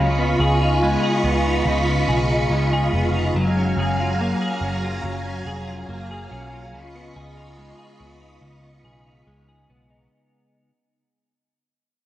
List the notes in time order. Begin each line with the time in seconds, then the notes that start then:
Already playing: C#2 C#3 C#4 F4 G#4
0.00 F4 D#5 B5 C#6
0.18 B3
0.40 C#2 G#4
0.61 D#4
0.83 G#3
1.03 G#4
1.24 C#2 B3
1.46 D#4
1.65 C#2 C#3
1.88 B3
2.08 B1 G#4
2.30 D#4
2.50 C#2 G#3
2.73 G#4
2.93 F1 B3
3.15 D#4
3.35 F#1 F#3 F5 G#5 A#5
3.57 C#4
3.77 F#1 G#4
4.00 F4
4.20 A#3
4.42 G#4
4.61 F#1 C#4
4.85 F4
5.04 F#1 F#3
5.26 C#4
5.46 F1 G#4
5.68 F4
5.89 F#1 A#3
6.11 G#4
6.31 B1 C#4
6.53 F4
6.73 C#2 C#3 F4 D#5 B5 C#6
6.95 B3
7.16 C#2 G#4
7.37 D#4
7.58 G#3
7.78 G#4
8.00 C#2 B3
8.21 D#4
8.42 C#2 C#3
8.63 B3
8.84 B1 G#4
9.06 D#4
9.27 C#2 G#3
9.49 G#4
9.70 B1 B3
9.90 D#4